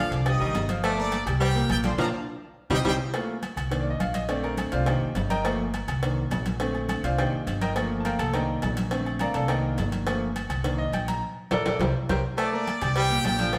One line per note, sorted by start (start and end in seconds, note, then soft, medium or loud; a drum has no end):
0.00 0.20 D3 medium
0.00 0.20 F3 medium
0.00 0.21 D4 medium
0.00 0.21 D5 medium
0.00 0.11 F5 loud
0.11 0.38 C2 medium
0.11 0.26 D5 medium
0.11 0.26 D6 medium
0.11 cowbell medium
0.11 high conga soft
0.26 0.38 G3 medium
0.26 0.38 G4 medium
0.26 0.67 D#5 loud
0.26 0.38 G5 medium
0.26 0.67 D#6 medium
0.26 cowbell medium
0.26 high conga soft
0.26 low agogo loud
0.40 0.53 A1 medium
0.40 0.63 D#3 medium
0.40 0.63 G3 medium
0.40 0.64 D#4 medium
0.40 0.64 D#5 medium
0.40 high conga soft
0.54 1.21 G1 medium
0.54 cowbell medium
0.54 high conga medium
0.54 low timbale medium
0.54 low agogo medium
0.69 0.93 F3 medium
0.69 0.93 F4 medium
0.69 0.93 F5 medium
0.69 cowbell medium
0.69 high conga medium
0.83 1.16 A3 loud
0.83 0.97 D5 medium
0.83 0.98 D6 medium
0.83 cowbell loud
0.83 high conga soft
0.83 low agogo loud
0.98 1.21 A#3 medium
0.98 1.21 A#4 medium
0.98 1.25 D5 loud
0.98 1.22 A#5 medium
0.98 1.26 D6 medium
0.98 high conga soft
1.12 cowbell medium
1.12 high conga medium
1.12 low agogo medium
1.26 1.67 C2 loud
1.26 1.50 G3 medium
1.26 1.50 G4 medium
1.26 1.50 G5 medium
1.26 cowbell medium
1.26 high conga soft
1.26 low conga medium
1.26 low agogo loud
1.40 1.63 G3 medium
1.40 1.69 G4 medium
1.40 1.68 G5 loud
1.40 cowbell loud
1.40 high conga soft
1.40 low agogo medium
1.55 1.79 A#2 medium
1.55 1.79 A#3 medium
1.55 1.79 A#4 medium
1.55 high conga soft
1.69 1.97 A#1 loud
1.69 1.77 G4 medium
1.69 1.77 G5 loud
1.69 cowbell medium
1.69 high conga medium
1.69 low agogo loud
1.83 1.96 D3 medium
1.83 1.92 F3 medium
1.83 1.96 D4 medium
1.83 1.92 C5 medium
1.83 1.96 D5 medium
1.83 1.92 C6 medium
1.83 cowbell medium
1.83 high conga medium
1.98 2.09 A#1 medium
1.98 2.06 F3 loud
1.98 2.08 A#3 loud
1.98 2.07 D4 loud
1.98 2.07 F4 loud
1.98 2.06 F5 medium
1.98 2.06 A5 medium
1.98 2.06 A#5 medium
1.98 cowbell loud
1.98 low conga loud
1.98 high timbale loud
2.70 2.81 C2 loud
2.70 2.77 G3 loud
2.70 2.80 C4 loud
2.70 2.80 D#4 medium
2.70 2.80 G4 loud
2.70 2.78 C5 medium
2.70 2.78 D#5 loud
2.70 2.78 G5 medium
2.70 cowbell loud
2.70 low conga loud
2.70 high timbale loud
2.84 2.96 C2 medium
2.84 2.91 G3 loud
2.84 2.94 C4 loud
2.84 2.94 D#4 medium
2.84 2.94 G4 loud
2.84 2.93 C5 loud
2.84 2.93 D#5 loud
2.84 2.93 G5 loud
2.84 cowbell loud
2.84 low conga loud
2.84 high timbale loud
3.14 3.33 A3 medium
3.14 3.33 A#3 medium
3.14 3.34 F4 medium
3.14 cowbell loud
3.14 high conga soft
3.14 low agogo loud
3.29 high conga soft
3.42 cowbell medium
3.42 high conga medium
3.42 low agogo medium
3.56 3.97 C2 medium
3.56 cowbell medium
3.56 high conga soft
3.56 low conga medium
3.56 low agogo loud
3.71 3.90 D#3 medium
3.71 3.90 A#3 soft
3.71 3.91 D4 medium
3.71 cowbell medium
3.71 high conga soft
3.71 low conga medium
3.71 low agogo medium
3.81 3.90 D5 medium
3.85 high conga soft
3.90 4.00 D#5 medium
4.00 4.67 A#1 medium
4.00 4.14 F5 loud
4.00 cowbell medium
4.00 high conga medium
4.00 low agogo medium
4.14 4.29 D#5 medium
4.14 cowbell medium
4.14 high conga medium
4.28 4.84 D3 medium
4.28 4.84 A3 medium
4.28 4.85 C4 medium
4.28 4.43 D5 medium
4.28 cowbell loud
4.28 high conga soft
4.28 low agogo medium
4.43 4.52 A#4 medium
4.43 high conga soft
4.43 low agogo medium
4.57 cowbell medium
4.57 high conga medium
4.57 low agogo loud
4.72 4.99 C2 medium
4.72 4.86 F4 medium
4.72 4.85 C5 medium
4.72 4.87 D5 medium
4.72 4.86 F5 medium
4.72 cowbell medium
4.72 high conga soft
4.86 5.06 D#3 soft
4.86 5.06 A#3 soft
4.86 5.06 D4 medium
4.86 5.27 G4 medium
4.86 5.27 C5 medium
4.86 5.27 D#5 medium
4.86 5.27 G5 medium
4.86 cowbell loud
4.86 high conga soft
4.86 low agogo loud
5.01 5.14 A1 medium
5.01 high conga soft
5.15 5.82 G1 medium
5.15 cowbell medium
5.15 high conga medium
5.15 low timbale medium
5.15 low agogo medium
5.30 5.45 A#4 medium
5.30 5.45 D#5 medium
5.30 5.45 G5 medium
5.30 5.44 A#5 loud
5.30 cowbell medium
5.30 high conga medium
5.44 5.64 F3 medium
5.44 5.64 A3 medium
5.44 5.64 A#3 medium
5.44 cowbell loud
5.44 low agogo loud
5.59 high conga soft
5.74 cowbell medium
5.74 high conga medium
5.74 low agogo medium
5.88 6.28 C2 medium
5.88 cowbell medium
5.88 high conga soft
5.88 low conga medium
5.88 low agogo loud
6.02 6.22 D#3 soft
6.02 6.22 A#3 soft
6.02 6.22 D4 medium
6.02 cowbell loud
6.02 high conga soft
6.02 low agogo medium
6.18 high conga soft
6.30 6.98 A#1 loud
6.30 cowbell medium
6.30 high conga medium
6.30 low timbale medium
6.30 low agogo loud
6.46 cowbell medium
6.46 high conga medium
6.60 7.01 D3 medium
6.60 7.02 A3 medium
6.60 7.02 C4 medium
6.60 cowbell loud
6.60 high conga soft
6.60 low agogo medium
6.75 high conga soft
6.75 low agogo medium
6.89 cowbell medium
6.89 high conga medium
6.89 low agogo loud
7.03 7.30 C2 medium
7.03 7.18 F4 medium
7.03 7.18 C5 medium
7.03 7.18 D5 medium
7.03 7.18 F5 medium
7.03 cowbell medium
7.03 high conga soft
7.18 7.37 D#3 soft
7.18 7.38 A#3 soft
7.18 7.38 D4 soft
7.18 7.59 G4 medium
7.18 7.59 C5 medium
7.18 7.59 D#5 soft
7.18 7.59 G5 medium
7.18 cowbell loud
7.18 high conga soft
7.18 low agogo loud
7.32 7.46 A1 medium
7.32 high conga soft
7.47 8.14 G1 loud
7.47 cowbell medium
7.47 high conga medium
7.47 low agogo medium
7.61 7.70 A#4 medium
7.61 7.70 D#5 medium
7.61 7.70 G5 medium
7.61 7.70 A#5 loud
7.61 cowbell medium
7.61 high conga medium
7.75 8.30 F3 medium
7.75 8.31 A3 medium
7.75 8.31 A#3 medium
7.75 cowbell loud
7.75 high conga soft
7.75 low agogo loud
7.91 high conga soft
8.00 8.03 A5 medium
8.05 8.19 A#4 medium
8.05 8.19 F5 medium
8.05 8.19 G5 medium
8.05 8.19 A#5 medium
8.05 cowbell medium
8.05 high conga medium
8.05 low agogo medium
8.19 8.59 C2 medium
8.19 8.33 A4 medium
8.19 8.33 A5 medium
8.19 cowbell medium
8.19 high conga soft
8.19 low conga medium
8.19 low agogo loud
8.33 8.75 D#3 soft
8.33 8.75 A#3 soft
8.33 8.75 D4 soft
8.33 8.61 A#4 medium
8.33 8.61 D#5 medium
8.33 8.61 G5 medium
8.33 8.61 A#5 medium
8.33 cowbell medium
8.33 high conga soft
8.33 low conga medium
8.33 low agogo medium
8.48 high conga soft
8.62 9.29 A#1 medium
8.62 cowbell medium
8.62 high conga medium
8.62 low timbale medium
8.62 low agogo loud
8.77 cowbell medium
8.77 high conga medium
8.91 9.46 D3 medium
8.91 9.47 A3 medium
8.91 9.47 C4 medium
8.91 cowbell loud
8.91 low agogo medium
9.06 high conga soft
9.06 low agogo medium
9.19 9.35 A#4 medium
9.19 9.33 D5 medium
9.19 9.33 F5 medium
9.19 9.34 A#5 medium
9.19 cowbell medium
9.19 high conga loud
9.19 low agogo loud
9.34 9.75 C2 loud
9.34 9.49 A4 medium
9.34 9.49 D5 medium
9.34 9.49 F5 medium
9.34 9.49 A5 medium
9.34 cowbell medium
9.34 high conga soft
9.48 10.03 D#3 soft
9.48 10.04 A#3 soft
9.48 10.04 D4 medium
9.48 9.76 A#4 medium
9.48 9.76 D#5 medium
9.48 9.76 G5 medium
9.48 9.76 A#5 medium
9.48 cowbell loud
9.48 high conga soft
9.48 low agogo loud
9.64 high conga soft
9.77 10.44 G1 medium
9.77 cowbell medium
9.77 high conga medium
9.77 low timbale medium
9.77 low agogo medium
9.92 cowbell medium
9.92 high conga medium
10.06 10.26 F3 medium
10.06 10.26 A3 medium
10.06 10.26 A#3 medium
10.06 cowbell loud
10.06 high conga soft
10.06 low agogo loud
10.22 high conga soft
10.36 cowbell medium
10.36 high conga medium
10.36 low agogo medium
10.49 10.90 C2 medium
10.49 cowbell medium
10.49 high conga soft
10.49 low conga medium
10.49 low agogo loud
10.64 10.83 D#3 soft
10.64 10.84 A#3 soft
10.64 10.84 D4 medium
10.64 cowbell medium
10.64 high conga soft
10.64 low conga medium
10.64 low agogo medium
10.78 10.93 D#5 loud
10.78 high conga soft
10.92 11.20 A#1 loud
10.92 11.08 G5 medium
10.92 cowbell medium
10.92 high conga medium
10.92 low agogo loud
11.08 11.22 A#5 loud
11.08 cowbell medium
11.08 high conga medium
11.51 11.62 A#1 loud
11.51 11.61 A4 loud
11.51 11.61 A#4 loud
11.51 11.60 D5 loud
11.51 cowbell loud
11.51 high conga medium
11.51 high timbale loud
11.65 11.76 A#1 medium
11.65 11.75 A4 medium
11.65 11.75 A#4 medium
11.65 11.75 D5 medium
11.65 cowbell loud
11.65 high conga medium
11.65 high timbale loud
11.79 11.91 C2 loud
11.79 11.90 G4 medium
11.79 11.90 A#4 medium
11.79 11.90 C5 medium
11.79 cowbell medium
11.79 high conga loud
11.79 high timbale loud
12.09 12.20 C2 medium
12.09 12.19 G4 loud
12.09 12.19 A#4 loud
12.09 12.19 C5 loud
12.09 cowbell loud
12.09 high conga loud
12.09 high timbale medium
12.38 12.70 A3 loud
12.38 12.52 D5 medium
12.38 12.53 D6 medium
12.38 cowbell loud
12.38 high conga soft
12.38 low agogo loud
12.53 12.76 A#3 medium
12.53 12.76 A#4 medium
12.53 12.93 D5 loud
12.53 12.77 A#5 medium
12.53 12.94 D6 medium
12.53 high conga soft
12.67 cowbell medium
12.67 high conga medium
12.67 low agogo medium
12.81 13.22 C2 loud
12.81 13.05 G3 medium
12.81 13.05 G4 medium
12.81 13.06 G5 medium
12.81 cowbell medium
12.81 high conga soft
12.81 low conga medium
12.81 low agogo loud
12.96 13.19 G3 medium
12.96 13.26 G4 medium
12.96 13.25 G5 loud
12.96 cowbell loud
12.96 low agogo medium
13.10 13.34 A#2 medium
13.10 13.34 A#3 medium
13.10 13.34 A#4 medium
13.10 high conga soft
13.24 13.58 A#1 loud
13.24 13.53 G4 loud
13.24 13.52 G5 loud
13.24 cowbell medium
13.24 high conga medium
13.24 low timbale medium
13.24 low agogo loud
13.39 13.51 D3 medium
13.39 13.58 F3 medium
13.39 13.51 D4 medium
13.39 13.51 D5 medium
13.39 cowbell medium
13.39 high conga medium
13.53 13.58 A#2 medium
13.53 13.58 A#3 medium
13.53 13.58 A#4 medium
13.53 cowbell loud
13.53 high conga soft
13.53 low agogo medium